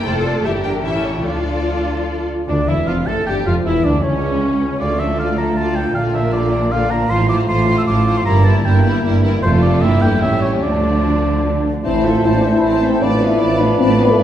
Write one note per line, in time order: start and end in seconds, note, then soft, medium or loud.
0.05 0.42 F1 soft
0.05 0.42 A3 soft
0.05 0.42 F4 soft
0.05 0.42 A4 soft
0.05 0.44 A4 medium
0.05 0.25 C5 medium
0.05 0.14 D5 soft
0.24 0.33 C5 soft
0.24 0.44 D5 medium
0.44 0.83 G1 soft
0.44 0.83 E3 soft
0.44 0.64 E4 soft
0.44 0.83 G4 soft
0.44 0.84 G4 soft
0.44 0.83 A#4 soft
0.44 0.52 E5 soft
0.64 0.84 D4 soft
0.64 0.72 G5 soft
0.84 1.25 A1 soft
0.84 1.24 E3 soft
0.84 1.25 C#4 soft
0.84 1.24 E4 soft
0.84 1.24 G4 soft
0.84 1.24 A4 soft
0.84 1.04 E5 soft
1.04 1.25 C#5 soft
1.25 2.28 D2 soft
1.25 2.28 F3 soft
1.25 2.28 D4 soft
1.25 2.28 F4 soft
1.25 2.26 F4 soft
1.25 2.26 A4 soft
1.25 2.26 D5 soft
2.48 2.66 D2 medium
2.48 2.67 D2 soft
2.48 2.57 D3 soft
2.48 2.66 D4 soft
2.48 2.56 D4 soft
2.48 2.67 D4 soft
2.48 2.70 D5 medium
2.67 2.88 E1 soft
2.67 2.87 E2 soft
2.67 2.87 E3 soft
2.67 2.87 E4 soft
2.67 2.88 E4 soft
2.67 2.76 E4 soft
2.67 2.89 E5 soft
2.87 3.07 F1 medium
2.87 3.07 F2 medium
2.87 3.07 F3 soft
2.87 3.07 F4 soft
2.87 2.96 F4 soft
2.87 3.09 F5 soft
3.07 3.15 A1 soft
3.07 3.15 A2 soft
3.07 3.27 A3 soft
3.07 3.27 A4 soft
3.07 3.16 A4 soft
3.07 3.27 A4 soft
3.07 3.26 A5 medium
3.26 3.46 G1 medium
3.26 3.46 G2 medium
3.26 3.46 G3 soft
3.26 3.46 G4 medium
3.26 3.35 G4 soft
3.26 3.46 G4 soft
3.26 3.35 G5 medium
3.46 3.54 F1 soft
3.46 3.54 F2 soft
3.46 3.66 F3 medium
3.46 3.54 F4 soft
3.46 3.55 F4 soft
3.46 3.55 F5 soft
3.65 3.84 E1 medium
3.65 3.84 E2 medium
3.65 3.85 E3 medium
3.65 3.84 E4 soft
3.65 3.73 E4 soft
3.65 3.85 E4 soft
3.65 3.86 E5 medium
3.84 4.03 D2 soft
3.84 4.04 D2 soft
3.84 4.04 D3 soft
3.84 3.92 D4 soft
3.84 3.93 D4 soft
3.84 4.04 D4 soft
3.84 4.03 D5 soft
4.03 4.79 C#2 medium
4.03 4.79 C#3 soft
4.03 4.79 C#4 soft
4.03 4.79 C#4 medium
4.03 4.79 C#5 medium
4.80 5.91 D2 soft
4.80 5.92 D2 soft
4.80 4.99 D3 soft
4.80 5.91 A3 soft
4.80 7.06 F4 soft
4.80 4.99 F4 soft
4.80 5.01 D5 medium
4.80 4.98 D5 soft
5.00 5.19 F3 soft
5.00 5.19 D4 soft
5.00 5.19 A4 soft
5.00 5.19 E5 medium
5.19 5.38 D3 soft
5.19 5.38 F4 soft
5.19 5.38 D5 soft
5.19 5.38 F5 medium
5.38 5.57 F3 soft
5.38 5.57 D4 soft
5.38 5.57 A4 soft
5.38 5.58 A#5 medium
5.56 5.75 D3 soft
5.56 5.74 F4 soft
5.56 5.75 D5 soft
5.56 5.77 A5 medium
5.76 5.96 F3 soft
5.76 5.95 D4 soft
5.76 5.96 A4 soft
5.76 5.94 G5 medium
5.95 7.10 A#1 soft
5.95 7.10 A#2 medium
5.95 6.14 D3 soft
5.95 7.07 A#3 soft
5.95 6.13 F4 soft
5.95 6.14 D5 soft
5.95 6.03 F5 medium
6.13 6.33 F3 soft
6.13 6.33 D4 soft
6.13 6.34 A#4 soft
6.13 6.33 E5 medium
6.33 6.52 D3 soft
6.33 6.52 F4 soft
6.33 6.52 D5 soft
6.33 6.74 D5 medium
6.52 6.71 F3 soft
6.52 6.71 D4 soft
6.52 6.71 A#4 soft
6.70 6.90 D3 soft
6.70 6.89 F4 soft
6.70 6.89 D5 soft
6.70 6.92 F5 medium
6.90 7.09 F3 soft
6.90 7.10 D4 soft
6.90 7.10 A#4 soft
6.90 7.12 A#5 medium
7.09 7.44 A1 medium
7.09 7.44 A2 medium
7.09 7.28 F3 medium
7.09 8.22 A3 medium
7.09 8.22 F4 medium
7.09 7.28 F4 soft
7.09 7.27 C5 soft
7.09 7.28 C6 medium
7.28 7.48 F3 soft
7.28 7.47 F4 soft
7.28 7.47 C5 soft
7.28 7.38 D6 medium
7.48 7.83 A1 medium
7.48 7.83 A2 medium
7.48 7.67 F3 soft
7.48 7.66 F4 medium
7.48 7.66 C5 medium
7.48 7.77 C6 medium
7.68 7.86 F3 soft
7.68 7.87 F4 soft
7.68 7.86 C5 soft
7.78 7.82 E6 medium
7.87 8.22 A1 medium
7.87 8.22 A2 medium
7.87 8.06 F3 soft
7.87 8.06 F4 soft
7.87 8.06 C5 soft
7.87 8.19 D6 medium
8.07 8.26 F3 medium
8.07 8.26 F4 soft
8.07 8.26 C5 soft
8.18 8.25 C6 medium
8.25 8.61 G1 medium
8.25 8.61 G2 medium
8.25 8.45 G3 medium
8.25 9.39 A#3 medium
8.25 9.39 E4 medium
8.25 8.44 E4 soft
8.25 8.43 A#4 medium
8.25 8.46 A#5 medium
8.45 8.64 G3 soft
8.45 8.64 E4 soft
8.45 8.63 A#4 soft
8.45 8.58 A5 medium
8.58 8.67 A5 soft
8.65 9.00 G1 medium
8.65 9.00 G2 medium
8.65 8.84 G3 soft
8.65 8.83 E4 medium
8.65 8.83 A#4 soft
8.65 9.05 G5 medium
8.84 9.03 G3 medium
8.84 9.03 E4 soft
8.84 9.04 A#4 soft
9.04 9.39 G1 medium
9.04 9.38 G2 medium
9.04 9.23 G3 medium
9.04 9.22 E4 soft
9.04 9.22 A#4 medium
9.23 9.43 G3 soft
9.23 9.43 E4 soft
9.23 9.43 A#4 soft
9.43 9.80 F1 medium
9.43 9.80 F2 medium
9.43 9.80 A3 medium
9.43 9.80 F4 medium
9.43 9.79 A4 medium
9.43 9.52 C5 medium
9.62 9.83 D5 medium
9.82 10.23 G1 medium
9.82 10.23 G2 medium
9.82 10.03 A#3 soft
9.82 10.23 A#3 soft
9.82 10.23 E4 medium
9.82 10.23 E4 soft
9.82 10.21 G4 medium
9.82 10.03 E5 medium
10.02 10.23 A3 soft
10.02 10.22 G5 medium
10.22 10.64 A1 medium
10.22 10.63 A2 medium
10.22 10.63 G3 soft
10.22 10.62 A3 soft
10.22 10.63 C#4 soft
10.22 10.64 C#4 soft
10.22 10.62 G4 soft
10.22 10.41 E5 medium
10.42 10.51 C#5 medium
10.63 11.63 D2 medium
10.63 11.62 D3 soft
10.63 11.64 F3 soft
10.63 11.63 A3 soft
10.63 11.64 D4 soft
10.63 11.65 D4 soft
10.63 11.64 F4 soft
10.63 11.62 D5 medium
11.85 12.20 A1 medium
11.85 12.20 A2 medium
11.85 13.04 E3 soft
11.85 12.03 C4 soft
11.85 12.03 E4 medium
11.85 13.04 C5 soft
11.85 13.05 C5 soft
11.85 12.04 C5 soft
11.85 12.03 A5 soft
11.85 13.04 A5 soft
12.04 12.25 A3 soft
12.04 12.24 F4 medium
12.04 12.25 A4 soft
12.04 12.24 E5 soft
12.24 12.59 A1 soft
12.24 12.59 A2 medium
12.24 12.44 C4 soft
12.24 12.29 E4 medium
12.24 12.44 C5 soft
12.24 12.44 A5 soft
12.35 12.44 D4 medium
12.43 12.64 A3 soft
12.43 12.63 A4 soft
12.43 12.64 E5 soft
12.54 12.83 E4 medium
12.63 12.99 A1 soft
12.63 12.98 A2 medium
12.63 12.82 C4 soft
12.63 12.82 C5 soft
12.63 12.83 A5 soft
12.83 13.02 A3 soft
12.83 13.02 C4 medium
12.83 13.03 A4 soft
12.83 13.03 E5 soft
13.02 13.37 A1 medium
13.02 13.37 A2 medium
13.02 14.19 F3 soft
13.02 13.21 A3 soft
13.02 13.22 D4 medium
13.02 14.23 B4 medium
13.02 13.21 D5 soft
13.02 14.23 D5 soft
13.02 13.21 A5 soft
13.02 14.23 B5 soft
13.21 13.42 B3 soft
13.21 13.60 E4 medium
13.21 13.41 B4 soft
13.21 13.41 F5 soft
13.41 13.76 A1 medium
13.41 13.76 A2 medium
13.41 13.61 A3 soft
13.41 13.61 D5 soft
13.41 13.61 A5 soft
13.60 13.81 B3 soft
13.60 13.80 D4 medium
13.60 13.80 B4 soft
13.60 13.81 F5 soft
13.80 14.15 A1 medium
13.80 14.15 A2 medium
13.80 13.99 A3 soft
13.80 13.89 C4 medium
13.80 13.98 D5 soft
13.80 13.99 A5 soft
13.99 14.09 B3 medium
13.99 14.19 B3 soft
13.99 14.19 B4 soft
13.99 14.20 F5 soft
14.10 14.20 A3 medium
14.19 14.23 G#1 medium
14.19 14.23 G#2 medium
14.19 14.23 E3 soft
14.19 14.23 G#3 soft
14.19 14.23 E4 medium
14.19 14.23 D5 soft
14.19 14.23 G#5 soft